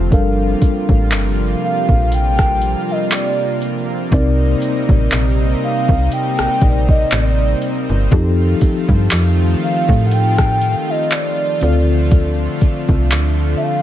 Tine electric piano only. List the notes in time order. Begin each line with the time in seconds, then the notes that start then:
0.10 G3 D4 A4 A#4 F5
4.11 C3 C4 D#4 A#4 D5
6.62 C3 C4 D#4 A#4 D5
6.70 D5
8.11 F3 C4 D#4 G4 A4
11.61 D3 C4 F4 A4 D5